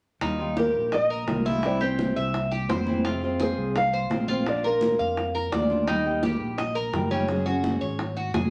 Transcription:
0.21 D#2 D#3 G3 D#4 F4, high bongo, high conga
0.39 G3 D#4 F4, high conga
0.57 G4 A#4, high bongo, high conga
0.75 A#1
0.92 D#5, muted nylon-string guitar stroke, high bongo, high conga
1.10 A#4, high conga
1.28 C2 D#3 G3 D#4 F4, high bongo, low bongo, high conga
1.45 G3 D#4 E4 F4, high conga
1.63 C3 E3 G3 C4 E4 D5, high bongo, high conga
1.81 E3 G3 C4 E4 G4 C5, high bongo, high conga
1.99 high bongo, high conga
2.16 C2 E5, high conga
2.34 muted nylon-string guitar stroke, high bongo, high conga
2.51 G4, high bongo, high conga
2.69 F2 E3 G3 C4 E4 C5, high bongo, low bongo, high conga
2.87 E3 G3 C4 E4, high bongo, high conga
3.05 C3 F3 G#3 C4 F4, high bongo
3.22 F3 G#3 C4 F4, high conga
3.40 G#4 C5, high bongo, high conga
3.57 C2
3.75 F5, muted nylon-string guitar stroke, high bongo, high conga
3.92 C5, high conga
4.10 A#1 F3 G#3 C4 F4, high bongo, low bongo, high conga
4.28 F3 G#3 C4 F4, high conga
4.46 F3 A#3 D4 F4 D5, high bongo, high conga
4.63 A#3 D4 F4 A#4, high bongo, high conga
4.81 high bongo, high conga
4.99 F2 F5, high conga
5.17 muted nylon-string guitar stroke, high bongo, high conga
5.35 A#4, high bongo, high conga
5.52 D#2 F3 A#3 D4 F4 D5, high bongo, low bongo, high conga
5.70 A#3 D4 F4, high bongo, high conga
5.88 D#3 G3 A#3 D#4 G4, high bongo, high conga
6.05 G3 A#3 D#4 G4, high conga
6.23 G4, high bongo, high conga
6.40 A#1
6.58 D#5, muted nylon-string guitar stroke, high bongo, high conga
6.75 A#4, high conga
6.93 F#1 G3 A#3 D#4 G4, high bongo, low bongo, high conga
7.11 G3 A#3 C#4 D#4 G4, high conga
7.29 F#3 G#3 C#4 G#4, high bongo, high conga
7.46 G#3 C#4 F#4 G#4, high bongo, high conga
7.64 high bongo, high conga
7.81 G#1 C#5, high conga
7.99 muted nylon-string guitar stroke, high bongo, high conga
8.17 F#4, high bongo, high conga
8.34 F1 F#3 G#3 C#4 G#4, high bongo, low bongo, high conga

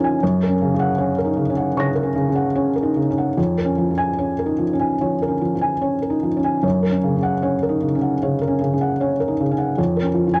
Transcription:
Already playing: F3 D#4 A#4 C#5 G#5
0.00 C#4
0.04 G#5
0.23 F#2 C#5
0.43 A#4
0.48 C#4
0.61 C#3
0.74 C#3
0.79 F#5
0.98 C#4 C#5
1.18 A#4
1.25 D#4
1.37 C#3
1.50 C#4
1.57 F#5
1.76 C#3 C#5 C#6 A#6
1.95 A#4
2.03 C#4
2.15 C#3
2.29 C#3
2.35 F#5
2.55 C#4 C#5
2.76 A#4
2.83 D#4
2.96 C#3
3.10 C#4
3.18 F#5
3.37 F2 C#5
3.58 A#4
3.65 C#4
3.78 F3
3.91 F3
3.98 G#5
4.18 C#4 C#5
4.39 A#4
4.46 D#4
4.59 F3
4.73 C#4
4.80 G#5
5.01 F3 C#5
5.22 A#4
5.28 C#4
5.41 F3
5.55 F3
5.61 G#5
5.82 C#4 C#5
6.02 A#4
6.10 D#4
6.23 F3
6.37 C#4
6.44 G#5
6.63 F#2 C#5
6.83 A#4
6.91 C#4
7.04 C#3
7.17 C#3
7.23 F#5
7.42 C#4 C#5
7.63 A#4
7.69 D#4
7.82 C#3
7.95 C#4
8.02 F#5
8.22 C#3 C#5
8.41 A#4
8.47 C#4
8.61 C#3
8.73 C#3
8.81 F#5
9.00 C#4 C#5
9.20 A#4
9.28 D#4
9.40 C#3
9.51 C#4
9.58 F#5
9.78 F2 C#5
9.96 A#4
10.02 C#4
10.15 F3
10.27 F3
10.34 G#5

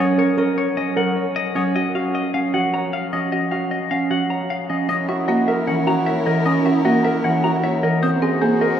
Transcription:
0.00 F#3 C#4 C#5
0.18 A#4 C#5
0.37 C#4 A#4 D#5
0.58 C#5
0.77 C#4 D#5
0.96 F#3 A#4 F#5
1.16 C#5
1.36 D#5
1.55 F#3 C#4 C#5 D#6
1.75 F#4 D#5
1.95 C#4 F#4 F5
2.15 D#5
2.34 C#4 F5 F#5
2.54 F3 F#4 F#5
2.73 C#5 A#5
2.93 F5
3.12 F3 C#4 D#5 D#6
3.32 F#4 D#5
3.51 C#4 F#4 F5
3.71 D#5
3.91 C#4 F5 F#5
4.10 F3 F#4 F#5
4.30 C#5 A#5
4.50 F5
4.69 F3 C#4 D#5 D#6
4.89 C#4 E4 A#4 D#5 D#6
5.09 C#4 F#4 E5
5.28 A#3 F#4 D#5
5.48 A#4 E5
5.67 E3 C#4 F#5
5.87 F#4 A#5
6.06 C#5 E5
6.26 E3 A#4 D#5
6.46 C#4 D#5 D#6
6.65 C#4 F#4 E5
6.85 A#3 F#4 D#5
7.04 A#4 E5
7.24 E3 C#4 F#5
7.44 F#4 A#5
7.64 C#5 E5
7.83 E3 A#4 D#5
8.02 C4 F#4 C5 D#6
8.22 C4 G#4 D#5
8.41 A#3 G#4 C5
8.61 A#4 D#5

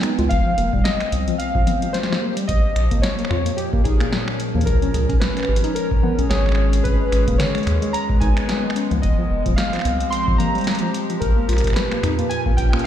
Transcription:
Already playing: D#3 G#3 B3 G#4 B4
0.03 D#4, finger snap, closed hi-hat
0.19 C#2 G#3, closed hi-hat, low conga
0.29 F1 F3 F5, kick, closed hi-hat, low conga
0.43 F3 C4
0.58 F1 A#3, closed hi-hat
0.73 D#1 G3, kick
0.84 D#5, snare, closed hi-hat
1.00 finger snap, closed hi-hat
1.12 C2, closed hi-hat
1.28 F3 G4 C5, closed hi-hat
1.38 F5, closed hi-hat
1.55 F3, kick
1.67 B3, closed hi-hat, low conga
1.82 F3, closed hi-hat
1.93 C5, snare, closed hi-hat
2.03 snare
2.09 F3, snare
2.21 A#3
2.37 G3, closed hi-hat
2.47 A#1 D#5, kick, closed hi-hat
2.76 A#1, finger snap, closed hi-hat
2.91 G#1 A#3, kick, closed hi-hat
3.00 A#2 C#5, snare, closed hi-hat
3.17 A#3 C#4, closed hi-hat
3.25 finger snap
3.29 F2 F4 C#5, finger snap
3.46 A#3 A#4 C#5, closed hi-hat
3.56 G4, closed hi-hat
3.73 A#3, kick
3.84 A#1 D#4 G#4, kick, closed hi-hat
4.00 A#3, finger snap, closed hi-hat
4.12 snare
4.28 finger snap
4.40 closed hi-hat
4.55 D#2 A#3, low conga
4.58 closed hi-hat, low conga
4.61 low conga
4.64 C#2 A#4, kick, closed hi-hat, low conga
4.67 low conga
4.71 low conga
4.79 C#4, closed hi-hat, low conga
4.94 C#2 G#4, closed hi-hat
5.08 B1 G#3 C#4, kick, closed hi-hat
5.20 B4, snare, closed hi-hat
5.37 C#4, finger snap, closed hi-hat
5.39 finger snap
5.43 finger snap
5.45 G4, finger snap
5.49 G#1
5.56 closed hi-hat
5.64 D#4 G#4, closed hi-hat
5.75 A#4, closed hi-hat
5.91 kick
6.03 B3, low conga
6.18 B1 C#4, closed hi-hat
6.29 G#1 G#4 C#5, snare, closed hi-hat
6.46 finger snap
6.49 finger snap
6.52 finger snap
6.55 C#5, finger snap
6.73 closed hi-hat
6.84 G#1 D#3 B4, kick, closed hi-hat
7.00 G#3
7.12 G#1 C#4, finger snap, closed hi-hat
7.28 D#1 A#3, kick, closed hi-hat
7.38 C#5, snare, closed hi-hat
7.55 G#3, finger snap, closed hi-hat
7.58 closed hi-hat
7.63 D#2, closed hi-hat
7.67 finger snap, closed hi-hat
7.82 G#3 B3 B4, closed hi-hat
7.93 A#5, closed hi-hat
8.09 G#3, kick
8.20 G#1 D#4 G#5, kick, closed hi-hat
8.37 finger snap, closed hi-hat
8.49 snare, closed hi-hat
8.64 G#3
8.70 finger snap
8.76 C#4, closed hi-hat
8.91 C#2 A#3, closed hi-hat, low conga
9.02 F1 F3 D#5, kick, closed hi-hat, low conga
9.19 F3
9.31 F1
9.44 D#1 F3 G4, kick, closed hi-hat
9.52 C4
9.56 F5, snare, closed hi-hat
9.73 F3, finger snap, closed hi-hat
9.75 finger snap
9.79 finger snap
9.81 C2 B3 C5, finger snap, closed hi-hat
10.00 closed hi-hat
10.10 C6, closed hi-hat
10.28 F3, kick
10.38 A#3 A#5, closed hi-hat, low conga
10.55 G3, closed hi-hat
10.58 closed hi-hat
10.61 closed hi-hat
10.64 snare, closed hi-hat
10.67 closed hi-hat
10.71 closed hi-hat
10.75 closed hi-hat
10.79 F3, closed hi-hat
10.94 closed hi-hat
11.10 F3, closed hi-hat
11.20 A#1 A#4, kick, closed hi-hat
11.32 A#2
11.37 A#3
11.49 A#1 F4, finger snap, closed hi-hat
11.53 finger snap
11.57 finger snap, closed hi-hat
11.60 G#1, finger snap, kick, closed hi-hat
11.67 finger snap, closed hi-hat
11.70 finger snap
11.73 B4, finger snap, snare, closed hi-hat
11.91 A#3, finger snap, closed hi-hat
12.03 F2 D#4, finger snap, closed hi-hat
12.11 C#4
12.19 A#3 A#4 C#5, closed hi-hat
12.29 G#5, closed hi-hat
12.46 A#3, kick
12.57 A#1 G5, kick, closed hi-hat
12.73 A#3, finger snap
12.79 closed hi-hat

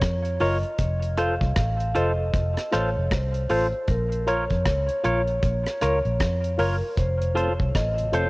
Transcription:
Already playing: C#5
0.02 F2, kick, cross-stick, closed hi-hat
0.25 closed hi-hat
0.40 F#1 F4 A#4 C#5 D#5, open hi-hat
0.63 closed hi-hat
0.79 F1, kick, closed hi-hat
1.03 closed hi-hat
1.18 F4 A4 C5 F5, closed hi-hat
1.41 C2, kick
1.56 A1 F5, kick, cross-stick, closed hi-hat
1.80 closed hi-hat
1.95 F1 F4 A4 C5 D#5, closed hi-hat
2.19 A4 C5
2.34 F1, kick, closed hi-hat
2.57 cross-stick, closed hi-hat
2.72 A1 F4 A4 C5 C#5, cross-stick, closed hi-hat
2.97 F1
3.11 C2 C5, kick, cross-stick, closed hi-hat
3.34 closed hi-hat
3.50 A1 F4 A4 C5, open hi-hat
3.72 closed hi-hat
3.88 A#1 A#4, kick, closed hi-hat
4.12 closed hi-hat
4.26 F4 A#4 C#5, closed hi-hat
4.50 F2, kick, closed hi-hat
4.65 C#2 C#5, kick, cross-stick, closed hi-hat
4.89 closed hi-hat
5.03 A#1 F4 A#4 C#5, closed hi-hat
5.27 A#4 C#5, closed hi-hat
5.42 A#1, kick, closed hi-hat
5.66 cross-stick, closed hi-hat
5.81 C#2 F4 A#4 C#5, cross-stick, closed hi-hat
6.05 A#1, closed hi-hat
6.20 F2, kick, cross-stick, closed hi-hat
6.44 closed hi-hat
6.58 F#1 F4 A#4 C#5, open hi-hat
6.90 C#5
6.97 F1 C5, kick, closed hi-hat
7.21 F2 C3, closed hi-hat
7.35 A3 C4 F4 A4 C5 C#5, closed hi-hat
7.60 C2, kick
7.75 A1 D#5, kick, cross-stick, closed hi-hat
7.98 F2 C3, closed hi-hat
8.12 F1 A3 C4 F4 A4 C5 C#5, closed hi-hat

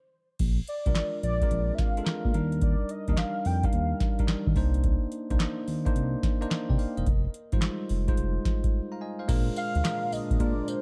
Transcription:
0.39 A#1, kick, closed hi-hat, crash
0.68 D5, closed hi-hat
0.86 C2 G#3 D4 F4 A#4, kick, closed hi-hat
0.95 snare, clap, closed hi-hat
1.23 A#1 D5, closed hi-hat
1.42 G#3 C4 F4 A#4, kick, closed hi-hat
1.49 A#1 D4, closed hi-hat
1.75 E5, kick, snare
1.79 F5, closed hi-hat
1.97 G#3 D4 F4 A4, closed hi-hat
2.05 A#4, snare, clap, closed hi-hat
2.25 A#2, kick
2.34 D#2 G3 D4 D#4 A#4, closed hi-hat
2.52 closed hi-hat
2.62 D5, kick, closed hi-hat
2.89 D#5, closed hi-hat
3.08 D#2 G3 D4 D#4 A#4, kick, closed hi-hat
3.17 F5, snare, clap, closed hi-hat
3.45 F2 G5, open hi-hat
3.63 G3 D4 D#4 A#4 F5, kick, closed hi-hat
3.73 D#2, closed hi-hat
4.00 kick, snare, closed hi-hat
4.19 G3 D4 D#4 A#4, kick, closed hi-hat
4.28 snare, clap, closed hi-hat
4.47 D#3, kick
4.56 C2 A#3 D4 D#4 C5, kick, open hi-hat
4.74 closed hi-hat
4.84 kick, closed hi-hat
5.12 closed hi-hat
5.30 C2 A#3 D4 D#4 C5, kick, closed hi-hat
5.40 snare, clap, closed hi-hat
5.68 D#2, open hi-hat
5.85 A#3 D4 D#4 C5, kick, closed hi-hat
5.96 C2, closed hi-hat
6.23 kick, snare, closed hi-hat
6.41 A#3 D4 D#4 C5, closed hi-hat
6.51 snare, clap, closed hi-hat
6.69 C3 D5 G5, kick
6.79 C5 F5, open hi-hat
6.97 E1 A#4 D#5, closed hi-hat
7.06 F1, kick, closed hi-hat
7.34 closed hi-hat
7.52 G#1 G3 D#4 F4 C5, kick, closed hi-hat
7.59 G#3, snare, clap, closed hi-hat
7.89 F1, open hi-hat
8.08 G#3 D#4 F4 C5, kick, closed hi-hat
8.17 F1, closed hi-hat
8.45 kick, snare, closed hi-hat
8.64 kick, closed hi-hat
8.92 F5 A#5
9.01 D#5 G#5
9.19 C5 F5
9.28 A#1 A#2 G#3 D4 F4 A#4, kick, closed hi-hat, crash, tambourine
9.56 F5, closed hi-hat, tambourine
9.75 D2, closed hi-hat
9.84 G#3 D4 F4 A#4, snare, clap, closed hi-hat, tambourine
10.12 A#1 D#5, open hi-hat, tambourine
10.31 A#1, kick, closed hi-hat
10.39 A#2 G#3 D4 F4 A#4 D5, kick, closed hi-hat
10.68 A#2 C5, closed hi-hat, tambourine

